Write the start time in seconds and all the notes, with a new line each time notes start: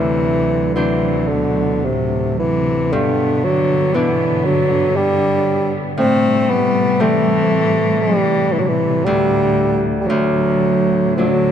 Already playing: D2 C3 D3 E3 F#3 A3 D4
0.75 C3 E3 F#3 D4 C5
1.29 B2 D3
1.84 A2 C3
2.39 C3 E3
2.91 G2 B2 D3 B3
3.44 D3 F#3
3.94 B2 D3 E3 B3 D4
4.45 D3 F#3
4.96 D3 G3
5.97 A2 C3 G3 A3 C4
6.50 G3 B3
7.00 E3 G3 A3 C4
8.02 G3
8.06 E3
8.52 E3
8.59 C3 D3 F#3
8.68 C3 E3
9.05 D2 D3 G3
10.01 E3 G3
10.08 D2 D3 F#3
11.17 D3 F#3 A3 D4